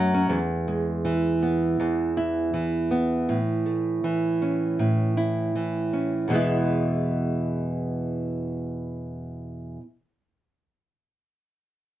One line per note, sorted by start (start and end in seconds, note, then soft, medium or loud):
0.00 0.29 F#2 medium
0.00 0.38 F#3 medium
0.00 0.38 A3 medium
0.00 0.13 C#4 medium
0.00 0.38 F#4 medium
0.14 0.38 C#4 medium
0.29 1.78 E2 medium
0.68 3.38 G#3 soft
1.05 2.53 E3 medium
1.43 2.90 B3 medium
1.80 3.29 E2 medium
2.17 5.17 E4 medium
2.54 4.04 E3 medium
2.91 3.38 B3 medium
3.29 4.78 A2 medium
3.66 6.32 A3 soft
4.04 5.55 E3 medium
4.42 5.92 C#4 soft
4.79 6.29 A2 medium
5.17 6.35 E4 medium
5.55 6.30 E3 medium
5.93 6.34 C#4 soft
6.28 9.78 E2 medium
6.28 9.80 B2 medium
6.28 9.81 E3 medium
6.33 9.83 G#3 medium
6.33 9.84 B3 medium
6.33 9.85 E4 medium